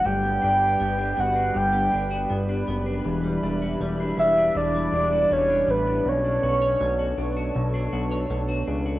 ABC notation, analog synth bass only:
X:1
M:4/4
L:1/8
Q:1/4=80
K:Edor
V:1 name="Analog synth bass" clef=bass
G,,, G,,, G,,, G,,, G,,, G,,, G,,, F,,, | E,,, E,,, E,,, E,,, E,,, E,,, E,,, A,,, | B,,, B,,, B,,, B,,, B,,, B,,, B,,, C,, |]